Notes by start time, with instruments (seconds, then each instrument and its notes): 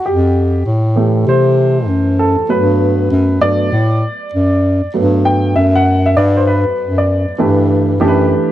0.04 bass clarinet F2, grand piano G4
0.66 bass clarinet A2
0.96 grand piano E3 A3 G4
1.27 bass clarinet C3, grand piano C5
1.88 bass clarinet F#2
2.19 grand piano A4
2.39 bass clarinet F#2
2.49 bass clarinet G2, grand piano F#3 A3 B3 B4
3.11 bass clarinet F#2
3.41 bass clarinet G2, grand piano F#3 A3 B3 D5
3.72 bass clarinet A2
4.33 bass clarinet F#2
4.84 bass clarinet F#2
4.94 bass clarinet G2, grand piano F#3 A3 B3
5.25 grand piano G5
5.56 bass clarinet F#2, grand piano E5
5.75 grand piano F#5
6.06 grand piano E5
6.17 bass clarinet G2, grand piano D5
6.37 grand piano C5
6.47 grand piano B4
6.67 bass clarinet F#2
6.78 bass clarinet F#2
6.98 grand piano D5
7.28 bass clarinet F#2
7.38 bass clarinet G2, grand piano E3 A3 D4 G4 B4
8.00 bass clarinet F#2, grand piano E3 A3 D4 G4 A4
8.08 grand piano B4